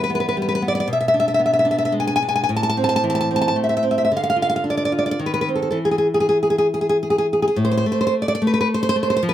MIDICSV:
0, 0, Header, 1, 2, 480
1, 0, Start_track
1, 0, Tempo, 524476
1, 801, Time_signature, 3, 2, 24, 8
1, 1771, Tempo, 541516
1, 4651, Tempo, 588235
1, 7051, Tempo, 545951
1, 8116, End_track
2, 0, Start_track
2, 0, Title_t, "Nylon-string guitar"
2, 0, Program_c, 0, 24
2, 0, Note_on_c, 0, 52, 62
2, 0, Note_on_c, 0, 55, 51
2, 33, Note_on_c, 0, 71, 75
2, 90, Note_on_c, 0, 59, 54
2, 91, Note_off_c, 0, 71, 0
2, 137, Note_on_c, 0, 71, 77
2, 173, Note_off_c, 0, 71, 0
2, 184, Note_on_c, 0, 71, 71
2, 251, Note_off_c, 0, 71, 0
2, 262, Note_on_c, 0, 71, 80
2, 324, Note_off_c, 0, 71, 0
2, 327, Note_off_c, 0, 55, 0
2, 338, Note_on_c, 0, 55, 48
2, 384, Note_on_c, 0, 71, 64
2, 433, Note_off_c, 0, 71, 0
2, 444, Note_on_c, 0, 71, 73
2, 492, Note_off_c, 0, 71, 0
2, 503, Note_on_c, 0, 71, 81
2, 558, Note_off_c, 0, 59, 0
2, 562, Note_off_c, 0, 71, 0
2, 569, Note_on_c, 0, 59, 48
2, 624, Note_on_c, 0, 74, 71
2, 675, Note_off_c, 0, 74, 0
2, 686, Note_on_c, 0, 74, 72
2, 722, Note_off_c, 0, 74, 0
2, 733, Note_on_c, 0, 74, 76
2, 775, Note_off_c, 0, 52, 0
2, 797, Note_off_c, 0, 74, 0
2, 801, Note_on_c, 0, 47, 68
2, 804, Note_off_c, 0, 59, 0
2, 806, Note_off_c, 0, 55, 0
2, 849, Note_on_c, 0, 76, 72
2, 909, Note_off_c, 0, 76, 0
2, 920, Note_on_c, 0, 76, 67
2, 979, Note_off_c, 0, 76, 0
2, 990, Note_on_c, 0, 76, 75
2, 1043, Note_on_c, 0, 62, 53
2, 1047, Note_off_c, 0, 76, 0
2, 1095, Note_on_c, 0, 76, 71
2, 1159, Note_off_c, 0, 76, 0
2, 1170, Note_on_c, 0, 76, 67
2, 1218, Note_off_c, 0, 76, 0
2, 1229, Note_on_c, 0, 76, 67
2, 1275, Note_on_c, 0, 59, 53
2, 1286, Note_off_c, 0, 76, 0
2, 1333, Note_on_c, 0, 76, 67
2, 1394, Note_off_c, 0, 76, 0
2, 1405, Note_on_c, 0, 76, 69
2, 1446, Note_off_c, 0, 76, 0
2, 1457, Note_on_c, 0, 76, 72
2, 1498, Note_off_c, 0, 62, 0
2, 1509, Note_on_c, 0, 62, 55
2, 1521, Note_off_c, 0, 76, 0
2, 1564, Note_on_c, 0, 76, 68
2, 1622, Note_off_c, 0, 76, 0
2, 1633, Note_on_c, 0, 76, 73
2, 1684, Note_off_c, 0, 76, 0
2, 1695, Note_on_c, 0, 76, 81
2, 1760, Note_on_c, 0, 56, 50
2, 1764, Note_off_c, 0, 76, 0
2, 1827, Note_on_c, 0, 80, 72
2, 1884, Note_off_c, 0, 80, 0
2, 1895, Note_on_c, 0, 80, 81
2, 1955, Note_off_c, 0, 80, 0
2, 1968, Note_on_c, 0, 80, 86
2, 2012, Note_off_c, 0, 59, 0
2, 2017, Note_off_c, 0, 62, 0
2, 2023, Note_off_c, 0, 80, 0
2, 2027, Note_on_c, 0, 62, 49
2, 2082, Note_on_c, 0, 80, 71
2, 2133, Note_off_c, 0, 80, 0
2, 2143, Note_on_c, 0, 80, 78
2, 2201, Note_off_c, 0, 80, 0
2, 2215, Note_on_c, 0, 80, 83
2, 2223, Note_off_c, 0, 47, 0
2, 2252, Note_off_c, 0, 56, 0
2, 2263, Note_on_c, 0, 45, 66
2, 2264, Note_off_c, 0, 62, 0
2, 2266, Note_off_c, 0, 80, 0
2, 2329, Note_on_c, 0, 81, 80
2, 2378, Note_off_c, 0, 81, 0
2, 2389, Note_on_c, 0, 81, 86
2, 2434, Note_off_c, 0, 81, 0
2, 2445, Note_on_c, 0, 81, 88
2, 2500, Note_off_c, 0, 81, 0
2, 2513, Note_on_c, 0, 60, 54
2, 2572, Note_on_c, 0, 81, 83
2, 2606, Note_off_c, 0, 81, 0
2, 2616, Note_on_c, 0, 81, 82
2, 2669, Note_off_c, 0, 81, 0
2, 2679, Note_on_c, 0, 81, 89
2, 2737, Note_off_c, 0, 81, 0
2, 2747, Note_on_c, 0, 52, 51
2, 2802, Note_on_c, 0, 81, 80
2, 2837, Note_off_c, 0, 81, 0
2, 2848, Note_on_c, 0, 81, 82
2, 2887, Note_off_c, 0, 81, 0
2, 2897, Note_on_c, 0, 81, 82
2, 2967, Note_off_c, 0, 81, 0
2, 2977, Note_off_c, 0, 60, 0
2, 2987, Note_on_c, 0, 60, 51
2, 3033, Note_on_c, 0, 81, 84
2, 3072, Note_off_c, 0, 81, 0
2, 3082, Note_on_c, 0, 81, 83
2, 3130, Note_off_c, 0, 81, 0
2, 3140, Note_on_c, 0, 81, 89
2, 3207, Note_off_c, 0, 52, 0
2, 3210, Note_off_c, 0, 81, 0
2, 3210, Note_on_c, 0, 57, 46
2, 3279, Note_on_c, 0, 76, 59
2, 3317, Note_off_c, 0, 76, 0
2, 3328, Note_on_c, 0, 76, 70
2, 3384, Note_off_c, 0, 76, 0
2, 3395, Note_on_c, 0, 76, 73
2, 3438, Note_off_c, 0, 60, 0
2, 3449, Note_on_c, 0, 60, 46
2, 3456, Note_off_c, 0, 76, 0
2, 3521, Note_on_c, 0, 76, 59
2, 3572, Note_off_c, 0, 76, 0
2, 3583, Note_on_c, 0, 76, 60
2, 3631, Note_off_c, 0, 76, 0
2, 3642, Note_on_c, 0, 76, 67
2, 3659, Note_off_c, 0, 45, 0
2, 3687, Note_off_c, 0, 60, 0
2, 3688, Note_off_c, 0, 57, 0
2, 3696, Note_off_c, 0, 76, 0
2, 3704, Note_on_c, 0, 50, 63
2, 3748, Note_on_c, 0, 77, 71
2, 3799, Note_off_c, 0, 77, 0
2, 3810, Note_on_c, 0, 77, 74
2, 3854, Note_off_c, 0, 77, 0
2, 3865, Note_on_c, 0, 77, 78
2, 3924, Note_off_c, 0, 77, 0
2, 3924, Note_on_c, 0, 65, 49
2, 3977, Note_on_c, 0, 77, 75
2, 4029, Note_off_c, 0, 77, 0
2, 4040, Note_on_c, 0, 77, 73
2, 4087, Note_off_c, 0, 77, 0
2, 4098, Note_on_c, 0, 77, 74
2, 4159, Note_off_c, 0, 77, 0
2, 4168, Note_on_c, 0, 62, 45
2, 4222, Note_on_c, 0, 74, 66
2, 4277, Note_off_c, 0, 74, 0
2, 4287, Note_on_c, 0, 74, 65
2, 4345, Note_off_c, 0, 74, 0
2, 4356, Note_on_c, 0, 74, 73
2, 4407, Note_off_c, 0, 65, 0
2, 4410, Note_off_c, 0, 74, 0
2, 4418, Note_on_c, 0, 65, 47
2, 4475, Note_on_c, 0, 74, 71
2, 4530, Note_off_c, 0, 74, 0
2, 4540, Note_on_c, 0, 74, 72
2, 4577, Note_off_c, 0, 74, 0
2, 4588, Note_on_c, 0, 74, 76
2, 4628, Note_off_c, 0, 50, 0
2, 4650, Note_off_c, 0, 74, 0
2, 4654, Note_off_c, 0, 62, 0
2, 4657, Note_off_c, 0, 65, 0
2, 4659, Note_on_c, 0, 51, 52
2, 4715, Note_on_c, 0, 71, 63
2, 4766, Note_off_c, 0, 71, 0
2, 4776, Note_on_c, 0, 71, 72
2, 4827, Note_off_c, 0, 71, 0
2, 4837, Note_on_c, 0, 71, 77
2, 4891, Note_off_c, 0, 71, 0
2, 4897, Note_on_c, 0, 60, 39
2, 4953, Note_on_c, 0, 69, 46
2, 5000, Note_off_c, 0, 69, 0
2, 5010, Note_on_c, 0, 69, 47
2, 5067, Note_off_c, 0, 69, 0
2, 5077, Note_on_c, 0, 69, 49
2, 5083, Note_off_c, 0, 51, 0
2, 5087, Note_on_c, 0, 52, 50
2, 5111, Note_off_c, 0, 60, 0
2, 5134, Note_off_c, 0, 69, 0
2, 5194, Note_on_c, 0, 68, 58
2, 5236, Note_off_c, 0, 68, 0
2, 5246, Note_on_c, 0, 68, 54
2, 5292, Note_off_c, 0, 68, 0
2, 5302, Note_on_c, 0, 68, 60
2, 5369, Note_off_c, 0, 68, 0
2, 5433, Note_on_c, 0, 68, 59
2, 5473, Note_off_c, 0, 68, 0
2, 5482, Note_on_c, 0, 68, 57
2, 5542, Note_off_c, 0, 68, 0
2, 5552, Note_on_c, 0, 68, 64
2, 5615, Note_off_c, 0, 68, 0
2, 5665, Note_on_c, 0, 68, 57
2, 5716, Note_off_c, 0, 68, 0
2, 5726, Note_on_c, 0, 68, 60
2, 5783, Note_off_c, 0, 68, 0
2, 5793, Note_on_c, 0, 68, 61
2, 5856, Note_off_c, 0, 68, 0
2, 5920, Note_on_c, 0, 68, 56
2, 5969, Note_off_c, 0, 68, 0
2, 5979, Note_on_c, 0, 68, 62
2, 6036, Note_off_c, 0, 68, 0
2, 6046, Note_on_c, 0, 68, 61
2, 6102, Note_off_c, 0, 68, 0
2, 6155, Note_on_c, 0, 68, 57
2, 6207, Note_off_c, 0, 68, 0
2, 6216, Note_on_c, 0, 68, 62
2, 6272, Note_off_c, 0, 68, 0
2, 6282, Note_on_c, 0, 68, 64
2, 6341, Note_off_c, 0, 68, 0
2, 6402, Note_on_c, 0, 68, 52
2, 6462, Note_off_c, 0, 68, 0
2, 6478, Note_on_c, 0, 68, 58
2, 6511, Note_off_c, 0, 68, 0
2, 6521, Note_on_c, 0, 68, 57
2, 6527, Note_off_c, 0, 52, 0
2, 6581, Note_off_c, 0, 68, 0
2, 6593, Note_on_c, 0, 45, 68
2, 6660, Note_on_c, 0, 72, 74
2, 6706, Note_off_c, 0, 72, 0
2, 6716, Note_on_c, 0, 72, 76
2, 6755, Note_off_c, 0, 72, 0
2, 6765, Note_on_c, 0, 72, 79
2, 6817, Note_off_c, 0, 45, 0
2, 6821, Note_off_c, 0, 72, 0
2, 6835, Note_on_c, 0, 57, 47
2, 6882, Note_on_c, 0, 72, 70
2, 6938, Note_off_c, 0, 72, 0
2, 6954, Note_on_c, 0, 72, 75
2, 6994, Note_off_c, 0, 72, 0
2, 7004, Note_on_c, 0, 72, 71
2, 7056, Note_off_c, 0, 72, 0
2, 7134, Note_on_c, 0, 74, 73
2, 7178, Note_off_c, 0, 74, 0
2, 7189, Note_on_c, 0, 74, 84
2, 7236, Note_off_c, 0, 74, 0
2, 7247, Note_on_c, 0, 74, 82
2, 7297, Note_off_c, 0, 57, 0
2, 7300, Note_off_c, 0, 74, 0
2, 7308, Note_on_c, 0, 57, 55
2, 7355, Note_on_c, 0, 71, 72
2, 7402, Note_off_c, 0, 71, 0
2, 7412, Note_on_c, 0, 71, 72
2, 7464, Note_off_c, 0, 71, 0
2, 7474, Note_on_c, 0, 71, 80
2, 7532, Note_off_c, 0, 71, 0
2, 7595, Note_on_c, 0, 72, 77
2, 7652, Note_off_c, 0, 72, 0
2, 7668, Note_on_c, 0, 72, 91
2, 7713, Note_off_c, 0, 72, 0
2, 7724, Note_on_c, 0, 72, 96
2, 7772, Note_off_c, 0, 57, 0
2, 7777, Note_off_c, 0, 72, 0
2, 7783, Note_on_c, 0, 57, 49
2, 7845, Note_on_c, 0, 72, 77
2, 7898, Note_off_c, 0, 72, 0
2, 7908, Note_on_c, 0, 72, 85
2, 7955, Note_off_c, 0, 72, 0
2, 7966, Note_on_c, 0, 72, 88
2, 7994, Note_off_c, 0, 57, 0
2, 8018, Note_off_c, 0, 72, 0
2, 8019, Note_on_c, 0, 53, 75
2, 8073, Note_on_c, 0, 71, 89
2, 8116, Note_off_c, 0, 53, 0
2, 8116, Note_off_c, 0, 71, 0
2, 8116, End_track
0, 0, End_of_file